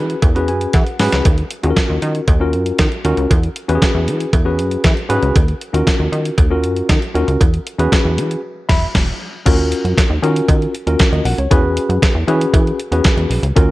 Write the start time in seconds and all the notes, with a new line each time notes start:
Already playing: E3 C#4 F#4 G#4 B4
0.10 closed hi-hat
0.22 E2, kick, closed hi-hat, cowbell
0.35 C#4 F#4 G#4 B4, closed hi-hat
0.48 F#2 G#5, closed hi-hat
0.61 closed hi-hat
0.73 E3 F#5, kick, snare, closed hi-hat, cowbell
0.87 closed hi-hat
0.99 G#2 C#4 F#4 G#4 B4, snare, open hi-hat
1.12 C#2, snare, closed hi-hat
1.25 D#2, kick, closed hi-hat, cowbell
1.38 closed hi-hat
1.51 closed hi-hat
1.63 D#2 C#4 F4 F#4 G#4, closed hi-hat
1.70 A#4
1.76 kick, snare, closed hi-hat, cowbell
1.90 D#2
2.02 D#3, closed hi-hat
2.15 closed hi-hat
2.28 D#2, kick, closed hi-hat, cowbell
2.40 C#4 F4 F#4 A#4
2.53 F#2, closed hi-hat
2.66 closed hi-hat
2.79 D#3, kick, snare, closed hi-hat, cowbell
2.92 closed hi-hat
3.05 D#2 C#4 F4 F#4 A#4, closed hi-hat
3.17 C#2, closed hi-hat
3.31 E2, kick, closed hi-hat, cowbell
3.43 closed hi-hat
3.56 closed hi-hat
3.68 E2 C#4 F#4 G4 B4, closed hi-hat
3.75 G#4
3.82 kick, snare, closed hi-hat, cowbell
3.94 E2
4.07 E3, closed hi-hat
4.20 closed hi-hat
4.33 E2, kick, closed hi-hat, cowbell
4.45 C#4 F#4 G#4 B4
4.58 F#2, closed hi-hat
4.71 closed hi-hat
4.84 E3, kick, snare, closed hi-hat, cowbell
4.97 closed hi-hat
5.09 G#2 C#4 F#4 G#4 B4, closed hi-hat
5.22 C#2, closed hi-hat
5.36 D#2, kick, closed hi-hat, cowbell
5.48 closed hi-hat
5.61 closed hi-hat
5.73 D#2 C#4 F4 F#4 A#4, closed hi-hat
5.87 kick, snare, closed hi-hat, cowbell
5.99 D#2
6.12 D#3, closed hi-hat
6.25 closed hi-hat
6.38 D#2, kick, closed hi-hat, cowbell
6.50 C#4 F4 F#4 A#4
6.63 F#2, closed hi-hat
6.76 closed hi-hat
6.89 D#3, kick, snare, closed hi-hat, cowbell
7.02 closed hi-hat
7.14 D#2 C#4 F4 F#4 A#4, closed hi-hat
7.28 C#2, closed hi-hat
7.41 E2, kick, closed hi-hat, cowbell
7.54 closed hi-hat
7.67 closed hi-hat
7.79 E2 C#4 F#4 G#4 B4, closed hi-hat
7.92 kick, snare, closed hi-hat, cowbell
8.05 E2
8.18 E3, closed hi-hat
8.31 closed hi-hat
8.69 E1 E5 B5, kick, snare, crash
8.95 E1, kick, snare, crash
9.45 D#2 C#4 F4 F#4 A#4, kick, closed hi-hat, crash, cowbell
9.72 closed hi-hat
9.84 F#2, closed hi-hat
9.98 kick, snare, closed hi-hat, cowbell
10.10 D#2
10.22 D#3 C#4 F4 F#4 A#4, closed hi-hat
10.36 closed hi-hat
10.48 D#3, kick, closed hi-hat, cowbell
10.62 closed hi-hat
10.75 closed hi-hat
10.87 D#2 C#4 F4 F#4 A#4, closed hi-hat
10.99 kick, snare, closed hi-hat, cowbell
11.12 D#2 D#5, closed hi-hat
11.25 B1 F#5, open hi-hat
11.38 C#2 C#5, closed hi-hat
11.51 E2 C#4 F#4 G#4 B4, kick, closed hi-hat, cowbell
11.77 closed hi-hat
11.89 F#2, closed hi-hat
12.02 kick, snare, closed hi-hat, cowbell
12.15 E2
12.28 E3 C#4 F#4 G#4 B4, closed hi-hat
12.41 closed hi-hat
12.53 E3, kick, closed hi-hat, cowbell
12.67 closed hi-hat
12.80 closed hi-hat
12.92 E2 C#4 F#4 G#4 B4, closed hi-hat
13.04 kick, snare, closed hi-hat, cowbell
13.17 E2, closed hi-hat
13.30 B1, open hi-hat
13.43 C#2, closed hi-hat
13.56 D#2 C#4 F4 F#4 A#4, kick, closed hi-hat, cowbell